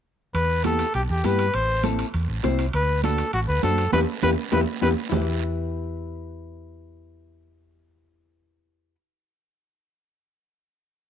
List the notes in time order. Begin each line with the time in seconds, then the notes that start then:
0.34 E2 B4, high conga, high timbale, long guiro
0.64 B3 E4 G4 A4, high conga, high timbale, short guiro
0.79 high timbale, short guiro
0.94 B1 G4, high conga, high timbale, long guiro
1.10 E2 G4
1.24 G2 B3 E4 G4 B4, high conga, high timbale, short guiro
1.39 high timbale, short guiro
1.54 A1 C5, high conga, high timbale, long guiro
1.83 C4 E4 A4, high conga, high timbale, short guiro
1.99 high timbale, short guiro
2.14 E2, high conga, high timbale, long guiro
2.28 A1
2.43 C2 C4 E4 C5, high conga, high timbale, low timbale, short guiro
2.59 high timbale, short guiro
2.73 D2 B4, high conga, high timbale, long guiro
3.03 D4 F#4 A4, high conga, high timbale, short guiro
3.18 high timbale, short guiro
3.33 A1 F#4, high conga, high timbale, long guiro
3.48 D2 B4
3.63 F#2 D4 F#4 A4 C5, high conga, high timbale, short guiro
3.78 high timbale, short guiro
3.93 E2 B3 E4 G4 B4, high conga, high timbale, long guiro
4.23 E2 B3 E4 G4 B4, high conga, high timbale, long guiro
4.52 E2 B3 E4 G4 B4, high conga, high timbale, long guiro
4.81 E2 B3 E4 G4 B4, high conga, high timbale
5.09 E2 E4 G4 B4, low conga, low timbale, long guiro